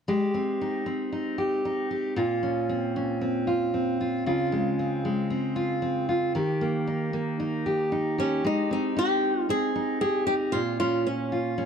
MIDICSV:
0, 0, Header, 1, 3, 480
1, 0, Start_track
1, 0, Key_signature, -4, "major"
1, 0, Tempo, 522648
1, 75, Time_signature, 4, 2, 24, 8
1, 10703, End_track
2, 0, Start_track
2, 0, Title_t, "Nylon-string guitar"
2, 0, Program_c, 0, 24
2, 7528, Note_on_c, 0, 61, 66
2, 7768, Note_off_c, 0, 61, 0
2, 7775, Note_on_c, 0, 63, 70
2, 8003, Note_off_c, 0, 63, 0
2, 8014, Note_on_c, 0, 63, 64
2, 8228, Note_off_c, 0, 63, 0
2, 8253, Note_on_c, 0, 67, 81
2, 8723, Note_off_c, 0, 67, 0
2, 8727, Note_on_c, 0, 68, 84
2, 9183, Note_off_c, 0, 68, 0
2, 9194, Note_on_c, 0, 68, 73
2, 9425, Note_off_c, 0, 68, 0
2, 9428, Note_on_c, 0, 67, 74
2, 9494, Note_off_c, 0, 67, 0
2, 9663, Note_on_c, 0, 65, 76
2, 9906, Note_off_c, 0, 65, 0
2, 9917, Note_on_c, 0, 65, 71
2, 10163, Note_off_c, 0, 65, 0
2, 10163, Note_on_c, 0, 61, 61
2, 10605, Note_off_c, 0, 61, 0
2, 10703, End_track
3, 0, Start_track
3, 0, Title_t, "Steel-string acoustic guitar"
3, 0, Program_c, 1, 25
3, 74, Note_on_c, 1, 56, 60
3, 80, Note_on_c, 1, 67, 53
3, 314, Note_on_c, 1, 60, 43
3, 563, Note_on_c, 1, 63, 48
3, 787, Note_off_c, 1, 60, 0
3, 790, Note_on_c, 1, 60, 48
3, 1022, Note_off_c, 1, 63, 0
3, 1033, Note_on_c, 1, 63, 45
3, 1257, Note_off_c, 1, 67, 0
3, 1268, Note_on_c, 1, 67, 52
3, 1506, Note_off_c, 1, 63, 0
3, 1517, Note_on_c, 1, 63, 47
3, 1740, Note_off_c, 1, 67, 0
3, 1751, Note_on_c, 1, 67, 47
3, 1987, Note_on_c, 1, 46, 64
3, 1991, Note_off_c, 1, 67, 0
3, 1994, Note_on_c, 1, 65, 54
3, 1996, Note_off_c, 1, 56, 0
3, 2045, Note_off_c, 1, 63, 0
3, 2226, Note_off_c, 1, 60, 0
3, 2230, Note_on_c, 1, 61, 45
3, 2474, Note_on_c, 1, 60, 49
3, 2716, Note_off_c, 1, 61, 0
3, 2719, Note_on_c, 1, 61, 47
3, 2947, Note_off_c, 1, 60, 0
3, 2951, Note_on_c, 1, 60, 47
3, 3184, Note_off_c, 1, 65, 0
3, 3188, Note_on_c, 1, 65, 53
3, 3430, Note_off_c, 1, 60, 0
3, 3434, Note_on_c, 1, 60, 49
3, 3675, Note_off_c, 1, 65, 0
3, 3678, Note_on_c, 1, 65, 51
3, 3912, Note_off_c, 1, 46, 0
3, 3916, Note_off_c, 1, 65, 0
3, 3916, Note_on_c, 1, 49, 65
3, 3920, Note_on_c, 1, 65, 50
3, 4149, Note_off_c, 1, 61, 0
3, 4153, Note_on_c, 1, 56, 50
3, 4396, Note_off_c, 1, 60, 0
3, 4400, Note_on_c, 1, 60, 49
3, 4625, Note_off_c, 1, 56, 0
3, 4636, Note_on_c, 1, 56, 49
3, 4860, Note_off_c, 1, 60, 0
3, 4871, Note_on_c, 1, 60, 51
3, 5094, Note_off_c, 1, 65, 0
3, 5105, Note_on_c, 1, 65, 57
3, 5334, Note_off_c, 1, 60, 0
3, 5345, Note_on_c, 1, 60, 49
3, 5580, Note_off_c, 1, 65, 0
3, 5591, Note_on_c, 1, 65, 49
3, 5831, Note_on_c, 1, 51, 64
3, 5834, Note_off_c, 1, 65, 0
3, 5836, Note_off_c, 1, 49, 0
3, 5838, Note_on_c, 1, 67, 51
3, 5879, Note_off_c, 1, 60, 0
3, 5884, Note_off_c, 1, 56, 0
3, 6072, Note_on_c, 1, 58, 48
3, 6313, Note_on_c, 1, 63, 50
3, 6539, Note_off_c, 1, 58, 0
3, 6550, Note_on_c, 1, 58, 47
3, 6789, Note_off_c, 1, 63, 0
3, 6792, Note_on_c, 1, 63, 48
3, 7031, Note_off_c, 1, 67, 0
3, 7034, Note_on_c, 1, 67, 56
3, 7268, Note_off_c, 1, 63, 0
3, 7272, Note_on_c, 1, 63, 51
3, 7512, Note_off_c, 1, 67, 0
3, 7515, Note_on_c, 1, 67, 51
3, 7752, Note_off_c, 1, 51, 0
3, 7756, Note_on_c, 1, 56, 62
3, 7801, Note_off_c, 1, 58, 0
3, 7999, Note_on_c, 1, 60, 45
3, 8229, Note_off_c, 1, 63, 0
3, 8233, Note_on_c, 1, 63, 50
3, 8713, Note_off_c, 1, 60, 0
3, 8716, Note_on_c, 1, 60, 46
3, 8948, Note_off_c, 1, 63, 0
3, 8959, Note_on_c, 1, 63, 52
3, 9193, Note_off_c, 1, 67, 0
3, 9197, Note_on_c, 1, 67, 53
3, 9426, Note_off_c, 1, 63, 0
3, 9437, Note_on_c, 1, 63, 46
3, 9675, Note_off_c, 1, 56, 0
3, 9681, Note_on_c, 1, 46, 62
3, 9724, Note_off_c, 1, 63, 0
3, 9724, Note_off_c, 1, 67, 0
3, 9920, Note_off_c, 1, 60, 0
3, 9924, Note_on_c, 1, 61, 48
3, 10397, Note_on_c, 1, 65, 52
3, 10630, Note_off_c, 1, 61, 0
3, 10633, Note_on_c, 1, 61, 50
3, 10703, Note_off_c, 1, 46, 0
3, 10703, Note_off_c, 1, 61, 0
3, 10703, Note_off_c, 1, 65, 0
3, 10703, End_track
0, 0, End_of_file